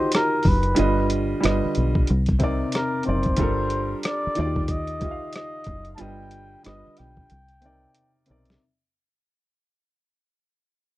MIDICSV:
0, 0, Header, 1, 6, 480
1, 0, Start_track
1, 0, Tempo, 652174
1, 565, Time_signature, 4, 2, 24, 8
1, 8074, End_track
2, 0, Start_track
2, 0, Title_t, "Muted trumpet"
2, 0, Program_c, 0, 59
2, 0, Note_on_c, 0, 72, 74
2, 80, Note_off_c, 0, 72, 0
2, 109, Note_on_c, 0, 70, 80
2, 353, Note_on_c, 0, 71, 74
2, 364, Note_off_c, 0, 70, 0
2, 819, Note_off_c, 0, 71, 0
2, 2028, Note_on_c, 0, 70, 70
2, 2241, Note_off_c, 0, 70, 0
2, 2260, Note_on_c, 0, 72, 78
2, 2943, Note_off_c, 0, 72, 0
2, 2985, Note_on_c, 0, 74, 80
2, 3427, Note_off_c, 0, 74, 0
2, 3427, Note_on_c, 0, 74, 58
2, 3464, Note_on_c, 0, 75, 81
2, 3475, Note_off_c, 0, 74, 0
2, 3935, Note_off_c, 0, 75, 0
2, 3944, Note_on_c, 0, 75, 80
2, 4347, Note_off_c, 0, 75, 0
2, 4382, Note_on_c, 0, 81, 66
2, 4419, Note_on_c, 0, 79, 90
2, 4430, Note_off_c, 0, 81, 0
2, 4892, Note_off_c, 0, 79, 0
2, 4897, Note_on_c, 0, 75, 76
2, 5141, Note_on_c, 0, 79, 84
2, 5152, Note_off_c, 0, 75, 0
2, 6093, Note_off_c, 0, 79, 0
2, 8074, End_track
3, 0, Start_track
3, 0, Title_t, "Grand piano"
3, 0, Program_c, 1, 0
3, 0, Control_c, 1, 64, 127
3, 0, Note_on_c, 1, 51, 61
3, 0, Note_on_c, 1, 63, 61
3, 0, Note_on_c, 1, 65, 55
3, 0, Note_on_c, 1, 66, 48
3, 0, Note_on_c, 1, 67, 60
3, 0, Note_on_c, 1, 75, 70
3, 504, Note_off_c, 1, 51, 0
3, 510, Note_off_c, 1, 63, 0
3, 512, Note_off_c, 1, 65, 0
3, 522, Note_off_c, 1, 75, 0
3, 542, Note_off_c, 1, 67, 0
3, 551, Note_on_c, 1, 55, 76
3, 560, Note_on_c, 1, 50, 74
3, 567, Note_on_c, 1, 65, 76
3, 575, Note_off_c, 1, 66, 0
3, 575, Control_c, 1, 64, 0
3, 575, Note_on_c, 1, 71, 72
3, 584, Note_on_c, 1, 75, 90
3, 701, Control_c, 1, 64, 127
3, 1023, Note_off_c, 1, 55, 0
3, 1034, Note_off_c, 1, 50, 0
3, 1034, Note_on_c, 1, 55, 77
3, 1042, Note_off_c, 1, 65, 0
3, 1045, Note_on_c, 1, 50, 73
3, 1050, Note_off_c, 1, 71, 0
3, 1053, Note_on_c, 1, 65, 73
3, 1054, Note_off_c, 1, 75, 0
3, 1054, Control_c, 1, 64, 0
3, 1062, Note_on_c, 1, 71, 76
3, 1069, Note_on_c, 1, 75, 92
3, 1192, Control_c, 1, 64, 127
3, 1483, Note_off_c, 1, 55, 0
3, 1488, Note_off_c, 1, 50, 0
3, 1492, Note_off_c, 1, 65, 0
3, 1497, Note_off_c, 1, 71, 0
3, 1500, Note_off_c, 1, 75, 0
3, 1533, Control_c, 1, 64, 0
3, 1657, Control_c, 1, 64, 127
3, 1758, Note_on_c, 1, 48, 77
3, 1764, Note_on_c, 1, 60, 66
3, 1775, Note_on_c, 1, 63, 69
3, 1785, Note_on_c, 1, 70, 65
3, 1793, Note_on_c, 1, 74, 83
3, 2205, Note_off_c, 1, 48, 0
3, 2208, Note_off_c, 1, 60, 0
3, 2213, Note_off_c, 1, 63, 0
3, 2218, Note_off_c, 1, 70, 0
3, 2222, Note_off_c, 1, 74, 0
3, 2238, Note_on_c, 1, 48, 55
3, 2248, Note_on_c, 1, 60, 49
3, 2255, Note_on_c, 1, 63, 50
3, 2265, Note_on_c, 1, 70, 51
3, 2273, Note_on_c, 1, 74, 61
3, 2463, Note_off_c, 1, 48, 0
3, 2468, Note_off_c, 1, 60, 0
3, 2472, Note_off_c, 1, 63, 0
3, 2477, Note_off_c, 1, 70, 0
3, 2477, Note_on_c, 1, 55, 77
3, 2481, Note_off_c, 1, 74, 0
3, 2484, Note_on_c, 1, 62, 68
3, 2493, Control_c, 1, 64, 0
3, 2493, Note_on_c, 1, 65, 68
3, 2502, Note_on_c, 1, 69, 72
3, 2513, Note_on_c, 1, 70, 89
3, 2639, Control_c, 1, 64, 127
3, 3200, Note_on_c, 1, 51, 65
3, 3201, Note_off_c, 1, 55, 0
3, 3205, Note_off_c, 1, 62, 0
3, 3208, Note_on_c, 1, 63, 60
3, 3209, Note_off_c, 1, 65, 0
3, 3213, Note_off_c, 1, 69, 0
3, 3215, Control_c, 1, 64, 0
3, 3219, Note_off_c, 1, 70, 0
3, 3220, Note_on_c, 1, 65, 64
3, 3227, Note_on_c, 1, 66, 48
3, 3236, Note_on_c, 1, 74, 73
3, 3276, Note_off_c, 1, 66, 0
3, 3277, Note_on_c, 1, 67, 59
3, 3350, Control_c, 1, 64, 127
3, 3646, Note_off_c, 1, 51, 0
3, 3650, Note_off_c, 1, 63, 0
3, 3656, Note_off_c, 1, 65, 0
3, 3664, Note_off_c, 1, 74, 0
3, 3676, Note_on_c, 1, 51, 61
3, 3684, Note_off_c, 1, 67, 0
3, 3688, Note_on_c, 1, 63, 53
3, 3697, Note_on_c, 1, 65, 56
3, 3704, Note_on_c, 1, 67, 53
3, 3714, Note_on_c, 1, 76, 53
3, 3760, Note_off_c, 1, 76, 0
3, 3761, Note_on_c, 1, 77, 63
3, 4345, Note_off_c, 1, 51, 0
3, 4351, Note_off_c, 1, 63, 0
3, 4356, Note_off_c, 1, 65, 0
3, 4359, Note_off_c, 1, 67, 0
3, 4388, Note_off_c, 1, 77, 0
3, 4397, Note_on_c, 1, 55, 77
3, 4403, Note_on_c, 1, 50, 64
3, 4412, Note_on_c, 1, 65, 66
3, 4414, Control_c, 1, 64, 0
3, 4423, Note_on_c, 1, 71, 69
3, 4432, Note_on_c, 1, 75, 80
3, 4556, Control_c, 1, 64, 127
3, 4871, Note_off_c, 1, 55, 0
3, 4880, Note_off_c, 1, 50, 0
3, 4882, Note_on_c, 1, 55, 64
3, 4888, Note_off_c, 1, 65, 0
3, 4891, Note_on_c, 1, 50, 56
3, 4893, Control_c, 1, 64, 0
3, 4894, Note_off_c, 1, 71, 0
3, 4898, Note_off_c, 1, 75, 0
3, 4900, Note_on_c, 1, 65, 57
3, 4907, Note_on_c, 1, 71, 60
3, 4917, Note_on_c, 1, 75, 67
3, 5009, Control_c, 1, 64, 127
3, 5327, Note_off_c, 1, 55, 0
3, 5331, Note_off_c, 1, 50, 0
3, 5336, Note_off_c, 1, 65, 0
3, 5339, Note_off_c, 1, 71, 0
3, 5344, Note_off_c, 1, 75, 0
3, 5375, Control_c, 1, 64, 0
3, 5502, Control_c, 1, 64, 127
3, 5599, Note_on_c, 1, 48, 58
3, 5608, Note_on_c, 1, 60, 53
3, 5617, Note_on_c, 1, 63, 50
3, 5624, Note_on_c, 1, 70, 53
3, 5634, Note_on_c, 1, 74, 65
3, 6045, Note_off_c, 1, 48, 0
3, 6050, Note_off_c, 1, 60, 0
3, 6054, Note_off_c, 1, 63, 0
3, 6058, Note_off_c, 1, 70, 0
3, 6063, Note_off_c, 1, 74, 0
3, 6080, Note_on_c, 1, 48, 59
3, 6090, Note_on_c, 1, 60, 56
3, 6097, Note_on_c, 1, 63, 55
3, 6107, Note_on_c, 1, 70, 57
3, 6117, Note_on_c, 1, 74, 66
3, 6304, Note_off_c, 1, 48, 0
3, 6309, Note_off_c, 1, 60, 0
3, 6312, Note_off_c, 1, 63, 0
3, 6318, Note_off_c, 1, 70, 0
3, 6322, Note_off_c, 1, 74, 0
3, 6334, Control_c, 1, 64, 0
3, 8074, End_track
4, 0, Start_track
4, 0, Title_t, "Fingered electric bass"
4, 0, Program_c, 2, 33
4, 341, Note_on_c, 2, 30, 74
4, 537, Note_off_c, 2, 30, 0
4, 582, Note_on_c, 2, 31, 90
4, 980, Note_off_c, 2, 31, 0
4, 1063, Note_on_c, 2, 31, 75
4, 1183, Note_off_c, 2, 31, 0
4, 1306, Note_on_c, 2, 35, 73
4, 1499, Note_off_c, 2, 35, 0
4, 1547, Note_on_c, 2, 36, 88
4, 1943, Note_off_c, 2, 36, 0
4, 2268, Note_on_c, 2, 30, 72
4, 2461, Note_off_c, 2, 30, 0
4, 2496, Note_on_c, 2, 31, 83
4, 2896, Note_off_c, 2, 31, 0
4, 3228, Note_on_c, 2, 39, 86
4, 3818, Note_off_c, 2, 39, 0
4, 4179, Note_on_c, 2, 30, 67
4, 4375, Note_off_c, 2, 30, 0
4, 4426, Note_on_c, 2, 31, 98
4, 4822, Note_off_c, 2, 31, 0
4, 4904, Note_on_c, 2, 31, 82
4, 5023, Note_off_c, 2, 31, 0
4, 5150, Note_on_c, 2, 35, 68
4, 5342, Note_off_c, 2, 35, 0
4, 5384, Note_on_c, 2, 36, 78
4, 5781, Note_off_c, 2, 36, 0
4, 6111, Note_on_c, 2, 35, 60
4, 6302, Note_off_c, 2, 35, 0
4, 8074, End_track
5, 0, Start_track
5, 0, Title_t, "Muted fingered electric bass strokes"
5, 1218, Note_on_c, 9, 29, 41
5, 1292, Note_off_c, 9, 29, 0
5, 3142, Note_on_c, 9, 29, 41
5, 3215, Note_off_c, 9, 29, 0
5, 5058, Note_on_c, 9, 29, 39
5, 5131, Note_off_c, 9, 29, 0
5, 8074, End_track
6, 0, Start_track
6, 0, Title_t, "Drums"
6, 86, Note_on_c, 9, 42, 80
6, 108, Note_on_c, 9, 37, 99
6, 159, Note_off_c, 9, 42, 0
6, 182, Note_off_c, 9, 37, 0
6, 314, Note_on_c, 9, 46, 39
6, 331, Note_on_c, 9, 36, 76
6, 388, Note_off_c, 9, 46, 0
6, 405, Note_off_c, 9, 36, 0
6, 464, Note_on_c, 9, 42, 37
6, 537, Note_off_c, 9, 42, 0
6, 561, Note_on_c, 9, 42, 76
6, 634, Note_off_c, 9, 42, 0
6, 808, Note_on_c, 9, 42, 63
6, 882, Note_off_c, 9, 42, 0
6, 1056, Note_on_c, 9, 42, 76
6, 1070, Note_on_c, 9, 37, 96
6, 1130, Note_off_c, 9, 42, 0
6, 1144, Note_off_c, 9, 37, 0
6, 1287, Note_on_c, 9, 42, 58
6, 1360, Note_off_c, 9, 42, 0
6, 1437, Note_on_c, 9, 36, 80
6, 1511, Note_off_c, 9, 36, 0
6, 1526, Note_on_c, 9, 42, 59
6, 1600, Note_off_c, 9, 42, 0
6, 1665, Note_on_c, 9, 42, 37
6, 1682, Note_on_c, 9, 36, 78
6, 1738, Note_off_c, 9, 42, 0
6, 1756, Note_off_c, 9, 36, 0
6, 1764, Note_on_c, 9, 42, 53
6, 1770, Note_on_c, 9, 36, 92
6, 1838, Note_off_c, 9, 42, 0
6, 1843, Note_off_c, 9, 36, 0
6, 2003, Note_on_c, 9, 42, 80
6, 2025, Note_on_c, 9, 37, 94
6, 2076, Note_off_c, 9, 42, 0
6, 2099, Note_off_c, 9, 37, 0
6, 2232, Note_on_c, 9, 42, 48
6, 2305, Note_off_c, 9, 42, 0
6, 2378, Note_on_c, 9, 42, 35
6, 2399, Note_on_c, 9, 36, 68
6, 2452, Note_off_c, 9, 42, 0
6, 2472, Note_off_c, 9, 36, 0
6, 2477, Note_on_c, 9, 42, 74
6, 2486, Note_on_c, 9, 36, 103
6, 2550, Note_off_c, 9, 42, 0
6, 2559, Note_off_c, 9, 36, 0
6, 2723, Note_on_c, 9, 42, 64
6, 2797, Note_off_c, 9, 42, 0
6, 2968, Note_on_c, 9, 42, 70
6, 2982, Note_on_c, 9, 37, 97
6, 3042, Note_off_c, 9, 42, 0
6, 3056, Note_off_c, 9, 37, 0
6, 3204, Note_on_c, 9, 42, 54
6, 3224, Note_on_c, 9, 37, 29
6, 3278, Note_off_c, 9, 42, 0
6, 3298, Note_off_c, 9, 37, 0
6, 3356, Note_on_c, 9, 36, 81
6, 3430, Note_off_c, 9, 36, 0
6, 3445, Note_on_c, 9, 42, 57
6, 3447, Note_on_c, 9, 36, 84
6, 3518, Note_off_c, 9, 42, 0
6, 3520, Note_off_c, 9, 36, 0
6, 3587, Note_on_c, 9, 42, 37
6, 3661, Note_off_c, 9, 42, 0
6, 3686, Note_on_c, 9, 42, 49
6, 3691, Note_on_c, 9, 36, 85
6, 3760, Note_off_c, 9, 42, 0
6, 3764, Note_off_c, 9, 36, 0
6, 3920, Note_on_c, 9, 42, 76
6, 3942, Note_on_c, 9, 37, 90
6, 3994, Note_off_c, 9, 42, 0
6, 4016, Note_off_c, 9, 37, 0
6, 4153, Note_on_c, 9, 42, 51
6, 4171, Note_on_c, 9, 36, 70
6, 4226, Note_off_c, 9, 42, 0
6, 4244, Note_off_c, 9, 36, 0
6, 4304, Note_on_c, 9, 42, 36
6, 4377, Note_off_c, 9, 42, 0
6, 4401, Note_on_c, 9, 42, 74
6, 4474, Note_off_c, 9, 42, 0
6, 4644, Note_on_c, 9, 42, 60
6, 4717, Note_off_c, 9, 42, 0
6, 4890, Note_on_c, 9, 42, 76
6, 4905, Note_on_c, 9, 37, 86
6, 4964, Note_off_c, 9, 42, 0
6, 4978, Note_off_c, 9, 37, 0
6, 5127, Note_on_c, 9, 42, 57
6, 5148, Note_on_c, 9, 37, 29
6, 5201, Note_off_c, 9, 42, 0
6, 5221, Note_off_c, 9, 37, 0
6, 5277, Note_on_c, 9, 36, 73
6, 5351, Note_off_c, 9, 36, 0
6, 5371, Note_on_c, 9, 42, 57
6, 5444, Note_off_c, 9, 42, 0
6, 5509, Note_on_c, 9, 42, 35
6, 5582, Note_off_c, 9, 42, 0
6, 5607, Note_on_c, 9, 42, 46
6, 5681, Note_off_c, 9, 42, 0
6, 5848, Note_on_c, 9, 42, 72
6, 5921, Note_off_c, 9, 42, 0
6, 6078, Note_on_c, 9, 42, 47
6, 6152, Note_off_c, 9, 42, 0
6, 6222, Note_on_c, 9, 42, 33
6, 6256, Note_on_c, 9, 38, 63
6, 6296, Note_off_c, 9, 42, 0
6, 6330, Note_off_c, 9, 38, 0
6, 8074, End_track
0, 0, End_of_file